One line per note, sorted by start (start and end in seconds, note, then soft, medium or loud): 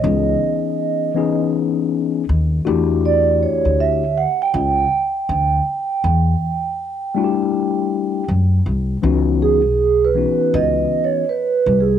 0.00 0.33 C#2 loud
0.00 1.10 E3 medium
0.00 1.11 B3 medium
0.00 1.11 C#4 medium
0.00 1.36 D#5 medium
0.04 1.11 D#4 medium
0.04 1.12 G#4 medium
1.14 2.22 E3 medium
1.14 2.23 B3 medium
1.14 2.23 C#4 medium
1.14 2.24 D#4 medium
1.14 2.24 G#4 medium
2.29 2.59 D#2 medium
2.65 3.44 E2 medium
2.65 4.03 A3 medium
2.65 4.03 D4 medium
2.65 4.03 E4 medium
2.65 4.02 F#4 medium
2.65 4.04 G4 loud
3.06 3.43 D5 medium
3.43 3.81 C#5 medium
3.65 4.24 D2 medium
3.81 4.18 E5 loud
4.18 4.42 F#5 medium
4.42 8.26 G5 medium
4.54 4.83 C#2 loud
5.29 5.59 D2 medium
6.04 6.33 E2 medium
7.15 8.23 G3 medium
7.15 8.23 A3 medium
7.15 8.23 D4 medium
7.15 8.24 E4 medium
7.15 7.25 F#4 medium
7.24 8.27 G4 medium
8.28 8.58 F#2 medium
8.66 8.96 C2 medium
9.02 9.65 C#2 medium
9.02 9.60 E3 medium
9.02 9.60 B3 medium
9.02 9.60 C#4 medium
9.02 9.61 D#4 medium
9.02 9.61 F#4 medium
9.42 10.06 G#4 medium
9.65 10.24 B1 medium
10.05 10.56 B4 medium
10.15 11.23 E3 medium
10.15 11.23 B3 medium
10.15 11.23 C#4 medium
10.15 11.24 D#4 medium
10.15 11.24 F#4 medium
10.54 10.83 C#2 loud
10.54 11.06 D#5 loud
11.04 11.30 C#5 medium
11.29 11.81 B4 medium
11.66 11.96 C2 medium
11.80 11.99 G#4 medium